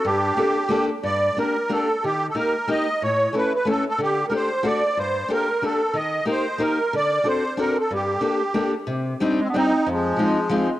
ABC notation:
X:1
M:3/4
L:1/16
Q:"Swing" 1/4=184
K:Gm
V:1 name="Accordion"
G8- G2 z2 | d4 B4 A4 | G3 A B4 e4 | ^c4 =B2 B2 A2 A2 |
G3 B c4 d4 | c4 B4 A4 | e4 c4 B4 | d4 c4 B2 A2 |
G8- G2 z2 | [K:Cm] z6 C D E4 | A,8- A,2 z2 |]
V:2 name="Steel-string acoustic guitar"
G,,4 [B,DGA]2 z2 [B,DGA]2 z2 | G,,4 [B,DGB]2 z2 [B,DGB]2 z2 | E,4 [B,EGB]2 z2 [B,EGB]2 z2 | A,,4 [A,^C=EA]2 z2 [A,CEA]2 z2 |
D,4 [A,DGA]2 z2 [A,D^FA]2 z2 | G,,4 [B,DGA]2 z2 [B,DGA]2 z2 | E,4 [B,EGB]2 z2 [B,EGB]2 z2 | D,4 [CD^FA]2 z2 [CDFA]2 z2 |
G,,4 [B,DGA]2 z2 [B,DGA]2 z2 | [K:Cm] C,4 [G,CDE]2 z2 [G,CDE]2 z2 | F,,4 [F,A,CE]2 z2 [F,A,CE]2 z2 |]
V:3 name="Clarinet"
D8- D2 z2 | z12 | z12 | z12 |
z12 | z12 | z12 | z12 |
z12 | [K:Cm] z6 A, =B, C4 | F,8- F,2 z2 |]